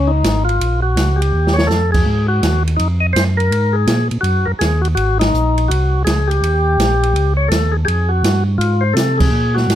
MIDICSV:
0, 0, Header, 1, 4, 480
1, 0, Start_track
1, 0, Tempo, 362976
1, 811, Time_signature, 4, 2, 24, 8
1, 12895, End_track
2, 0, Start_track
2, 0, Title_t, "Tonewheel organ"
2, 0, Program_c, 0, 16
2, 0, Note_on_c, 0, 61, 79
2, 99, Note_on_c, 0, 63, 87
2, 152, Note_off_c, 0, 61, 0
2, 577, Note_off_c, 0, 63, 0
2, 591, Note_on_c, 0, 65, 91
2, 1063, Note_off_c, 0, 65, 0
2, 1088, Note_on_c, 0, 66, 86
2, 1535, Note_on_c, 0, 67, 79
2, 1603, Note_off_c, 0, 66, 0
2, 2030, Note_on_c, 0, 73, 81
2, 2067, Note_off_c, 0, 67, 0
2, 2209, Note_on_c, 0, 69, 99
2, 2229, Note_off_c, 0, 73, 0
2, 2523, Note_off_c, 0, 69, 0
2, 2540, Note_on_c, 0, 68, 90
2, 3000, Note_off_c, 0, 68, 0
2, 3018, Note_on_c, 0, 66, 95
2, 3479, Note_off_c, 0, 66, 0
2, 3657, Note_on_c, 0, 63, 87
2, 3807, Note_off_c, 0, 63, 0
2, 3973, Note_on_c, 0, 75, 89
2, 4055, Note_off_c, 0, 75, 0
2, 4140, Note_on_c, 0, 72, 104
2, 4290, Note_off_c, 0, 72, 0
2, 4460, Note_on_c, 0, 70, 113
2, 4932, Note_on_c, 0, 68, 91
2, 4970, Note_off_c, 0, 70, 0
2, 5396, Note_off_c, 0, 68, 0
2, 5566, Note_on_c, 0, 66, 91
2, 5892, Note_on_c, 0, 70, 91
2, 5916, Note_off_c, 0, 66, 0
2, 5974, Note_off_c, 0, 70, 0
2, 6069, Note_on_c, 0, 68, 103
2, 6367, Note_on_c, 0, 66, 86
2, 6374, Note_off_c, 0, 68, 0
2, 6450, Note_off_c, 0, 66, 0
2, 6544, Note_on_c, 0, 66, 99
2, 6852, Note_off_c, 0, 66, 0
2, 6869, Note_on_c, 0, 63, 104
2, 7516, Note_on_c, 0, 66, 86
2, 7543, Note_off_c, 0, 63, 0
2, 7971, Note_off_c, 0, 66, 0
2, 7994, Note_on_c, 0, 68, 104
2, 8297, Note_on_c, 0, 67, 99
2, 8330, Note_off_c, 0, 68, 0
2, 9700, Note_off_c, 0, 67, 0
2, 9743, Note_on_c, 0, 73, 80
2, 9897, Note_on_c, 0, 69, 95
2, 9908, Note_off_c, 0, 73, 0
2, 10206, Note_on_c, 0, 68, 88
2, 10240, Note_off_c, 0, 69, 0
2, 10271, Note_off_c, 0, 68, 0
2, 10380, Note_on_c, 0, 67, 69
2, 10386, Note_on_c, 0, 68, 95
2, 10417, Note_off_c, 0, 67, 0
2, 10696, Note_on_c, 0, 66, 86
2, 10725, Note_off_c, 0, 68, 0
2, 11157, Note_off_c, 0, 66, 0
2, 11347, Note_on_c, 0, 65, 91
2, 11648, Note_on_c, 0, 72, 75
2, 11685, Note_off_c, 0, 65, 0
2, 11815, Note_on_c, 0, 69, 99
2, 11837, Note_off_c, 0, 72, 0
2, 12137, Note_on_c, 0, 68, 101
2, 12159, Note_off_c, 0, 69, 0
2, 12622, Note_on_c, 0, 66, 99
2, 12646, Note_off_c, 0, 68, 0
2, 12895, Note_off_c, 0, 66, 0
2, 12895, End_track
3, 0, Start_track
3, 0, Title_t, "Tonewheel organ"
3, 0, Program_c, 1, 16
3, 0, Note_on_c, 1, 37, 84
3, 307, Note_off_c, 1, 37, 0
3, 309, Note_on_c, 1, 32, 86
3, 786, Note_off_c, 1, 32, 0
3, 796, Note_on_c, 1, 34, 72
3, 1269, Note_off_c, 1, 34, 0
3, 1272, Note_on_c, 1, 37, 90
3, 1748, Note_off_c, 1, 37, 0
3, 1765, Note_on_c, 1, 39, 84
3, 2233, Note_on_c, 1, 41, 72
3, 2235, Note_off_c, 1, 39, 0
3, 2709, Note_off_c, 1, 41, 0
3, 2724, Note_on_c, 1, 44, 80
3, 3194, Note_off_c, 1, 44, 0
3, 3206, Note_on_c, 1, 39, 88
3, 3675, Note_off_c, 1, 39, 0
3, 3691, Note_on_c, 1, 41, 88
3, 4158, Note_off_c, 1, 41, 0
3, 4169, Note_on_c, 1, 42, 78
3, 4637, Note_off_c, 1, 42, 0
3, 4638, Note_on_c, 1, 44, 83
3, 5111, Note_off_c, 1, 44, 0
3, 5121, Note_on_c, 1, 46, 93
3, 5421, Note_off_c, 1, 46, 0
3, 5440, Note_on_c, 1, 46, 42
3, 5524, Note_off_c, 1, 46, 0
3, 5591, Note_on_c, 1, 42, 94
3, 5896, Note_off_c, 1, 42, 0
3, 5914, Note_on_c, 1, 42, 38
3, 6000, Note_off_c, 1, 42, 0
3, 6091, Note_on_c, 1, 39, 82
3, 6558, Note_off_c, 1, 39, 0
3, 6560, Note_on_c, 1, 32, 83
3, 7032, Note_off_c, 1, 32, 0
3, 7050, Note_on_c, 1, 34, 88
3, 7517, Note_off_c, 1, 34, 0
3, 7531, Note_on_c, 1, 36, 95
3, 7998, Note_off_c, 1, 36, 0
3, 8004, Note_on_c, 1, 37, 71
3, 8474, Note_off_c, 1, 37, 0
3, 8487, Note_on_c, 1, 39, 72
3, 8956, Note_off_c, 1, 39, 0
3, 8960, Note_on_c, 1, 34, 91
3, 9432, Note_off_c, 1, 34, 0
3, 9437, Note_on_c, 1, 37, 87
3, 9910, Note_off_c, 1, 37, 0
3, 9917, Note_on_c, 1, 39, 71
3, 10390, Note_off_c, 1, 39, 0
3, 10414, Note_on_c, 1, 41, 81
3, 10878, Note_on_c, 1, 43, 90
3, 10879, Note_off_c, 1, 41, 0
3, 11349, Note_on_c, 1, 44, 88
3, 11350, Note_off_c, 1, 43, 0
3, 11825, Note_off_c, 1, 44, 0
3, 11832, Note_on_c, 1, 48, 85
3, 12307, Note_off_c, 1, 48, 0
3, 12311, Note_on_c, 1, 46, 79
3, 12786, Note_off_c, 1, 46, 0
3, 12798, Note_on_c, 1, 44, 90
3, 12895, Note_off_c, 1, 44, 0
3, 12895, End_track
4, 0, Start_track
4, 0, Title_t, "Drums"
4, 322, Note_on_c, 9, 44, 58
4, 322, Note_on_c, 9, 51, 68
4, 323, Note_on_c, 9, 38, 69
4, 454, Note_off_c, 9, 44, 0
4, 454, Note_off_c, 9, 51, 0
4, 455, Note_off_c, 9, 38, 0
4, 647, Note_on_c, 9, 51, 41
4, 779, Note_off_c, 9, 51, 0
4, 810, Note_on_c, 9, 51, 65
4, 942, Note_off_c, 9, 51, 0
4, 1283, Note_on_c, 9, 44, 50
4, 1283, Note_on_c, 9, 51, 70
4, 1285, Note_on_c, 9, 38, 67
4, 1416, Note_off_c, 9, 44, 0
4, 1416, Note_off_c, 9, 51, 0
4, 1417, Note_off_c, 9, 38, 0
4, 1611, Note_on_c, 9, 51, 59
4, 1743, Note_off_c, 9, 51, 0
4, 1944, Note_on_c, 9, 38, 61
4, 2076, Note_off_c, 9, 38, 0
4, 2095, Note_on_c, 9, 38, 86
4, 2227, Note_off_c, 9, 38, 0
4, 2252, Note_on_c, 9, 44, 50
4, 2253, Note_on_c, 9, 38, 55
4, 2384, Note_off_c, 9, 44, 0
4, 2385, Note_off_c, 9, 38, 0
4, 2569, Note_on_c, 9, 49, 71
4, 2570, Note_on_c, 9, 36, 72
4, 2701, Note_off_c, 9, 49, 0
4, 2703, Note_off_c, 9, 36, 0
4, 3212, Note_on_c, 9, 44, 56
4, 3212, Note_on_c, 9, 51, 70
4, 3214, Note_on_c, 9, 38, 72
4, 3344, Note_off_c, 9, 44, 0
4, 3344, Note_off_c, 9, 51, 0
4, 3346, Note_off_c, 9, 38, 0
4, 3537, Note_on_c, 9, 51, 49
4, 3669, Note_off_c, 9, 51, 0
4, 3695, Note_on_c, 9, 51, 62
4, 3828, Note_off_c, 9, 51, 0
4, 4181, Note_on_c, 9, 44, 59
4, 4181, Note_on_c, 9, 51, 71
4, 4182, Note_on_c, 9, 38, 70
4, 4313, Note_off_c, 9, 44, 0
4, 4313, Note_off_c, 9, 51, 0
4, 4314, Note_off_c, 9, 38, 0
4, 4496, Note_on_c, 9, 51, 41
4, 4628, Note_off_c, 9, 51, 0
4, 4657, Note_on_c, 9, 51, 64
4, 4790, Note_off_c, 9, 51, 0
4, 5123, Note_on_c, 9, 44, 57
4, 5123, Note_on_c, 9, 51, 72
4, 5125, Note_on_c, 9, 38, 71
4, 5256, Note_off_c, 9, 44, 0
4, 5256, Note_off_c, 9, 51, 0
4, 5257, Note_off_c, 9, 38, 0
4, 5436, Note_on_c, 9, 51, 49
4, 5569, Note_off_c, 9, 51, 0
4, 5609, Note_on_c, 9, 51, 59
4, 5741, Note_off_c, 9, 51, 0
4, 6098, Note_on_c, 9, 44, 57
4, 6098, Note_on_c, 9, 51, 71
4, 6099, Note_on_c, 9, 38, 63
4, 6230, Note_off_c, 9, 44, 0
4, 6230, Note_off_c, 9, 51, 0
4, 6232, Note_off_c, 9, 38, 0
4, 6412, Note_on_c, 9, 51, 47
4, 6544, Note_off_c, 9, 51, 0
4, 6574, Note_on_c, 9, 51, 58
4, 6706, Note_off_c, 9, 51, 0
4, 6890, Note_on_c, 9, 51, 65
4, 6891, Note_on_c, 9, 38, 79
4, 7022, Note_off_c, 9, 51, 0
4, 7023, Note_off_c, 9, 38, 0
4, 7063, Note_on_c, 9, 44, 52
4, 7195, Note_off_c, 9, 44, 0
4, 7374, Note_on_c, 9, 51, 47
4, 7507, Note_off_c, 9, 51, 0
4, 7554, Note_on_c, 9, 51, 71
4, 7686, Note_off_c, 9, 51, 0
4, 8024, Note_on_c, 9, 44, 56
4, 8024, Note_on_c, 9, 51, 79
4, 8025, Note_on_c, 9, 38, 71
4, 8156, Note_off_c, 9, 44, 0
4, 8156, Note_off_c, 9, 51, 0
4, 8157, Note_off_c, 9, 38, 0
4, 8345, Note_on_c, 9, 51, 47
4, 8477, Note_off_c, 9, 51, 0
4, 8510, Note_on_c, 9, 51, 62
4, 8642, Note_off_c, 9, 51, 0
4, 8988, Note_on_c, 9, 44, 63
4, 8988, Note_on_c, 9, 51, 65
4, 8990, Note_on_c, 9, 38, 66
4, 9121, Note_off_c, 9, 44, 0
4, 9121, Note_off_c, 9, 51, 0
4, 9122, Note_off_c, 9, 38, 0
4, 9302, Note_on_c, 9, 51, 46
4, 9434, Note_off_c, 9, 51, 0
4, 9467, Note_on_c, 9, 51, 58
4, 9599, Note_off_c, 9, 51, 0
4, 9938, Note_on_c, 9, 44, 55
4, 9938, Note_on_c, 9, 51, 69
4, 9939, Note_on_c, 9, 38, 65
4, 10070, Note_off_c, 9, 44, 0
4, 10070, Note_off_c, 9, 51, 0
4, 10071, Note_off_c, 9, 38, 0
4, 10423, Note_on_c, 9, 51, 60
4, 10556, Note_off_c, 9, 51, 0
4, 10900, Note_on_c, 9, 44, 58
4, 10900, Note_on_c, 9, 51, 73
4, 10902, Note_on_c, 9, 38, 68
4, 11033, Note_off_c, 9, 44, 0
4, 11033, Note_off_c, 9, 51, 0
4, 11034, Note_off_c, 9, 38, 0
4, 11386, Note_on_c, 9, 51, 66
4, 11518, Note_off_c, 9, 51, 0
4, 11857, Note_on_c, 9, 44, 59
4, 11857, Note_on_c, 9, 51, 68
4, 11858, Note_on_c, 9, 38, 76
4, 11989, Note_off_c, 9, 44, 0
4, 11989, Note_off_c, 9, 51, 0
4, 11991, Note_off_c, 9, 38, 0
4, 12170, Note_on_c, 9, 36, 88
4, 12170, Note_on_c, 9, 49, 78
4, 12302, Note_off_c, 9, 36, 0
4, 12302, Note_off_c, 9, 49, 0
4, 12655, Note_on_c, 9, 38, 41
4, 12787, Note_off_c, 9, 38, 0
4, 12823, Note_on_c, 9, 44, 53
4, 12823, Note_on_c, 9, 51, 65
4, 12825, Note_on_c, 9, 38, 67
4, 12895, Note_off_c, 9, 38, 0
4, 12895, Note_off_c, 9, 44, 0
4, 12895, Note_off_c, 9, 51, 0
4, 12895, End_track
0, 0, End_of_file